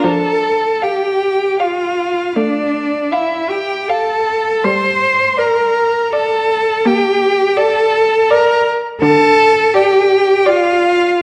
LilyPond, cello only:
\new Staff \with { instrumentName = "Cello" } { \time 3/4 \key f \major \tempo 4 = 80 a'4 g'4 f'4 | d'4 e'8 g'8 a'4 | c''4 bes'4 a'4 | g'4 a'4 bes'8 r8 |
\key d \phrygian a'4 g'4 f'4 | }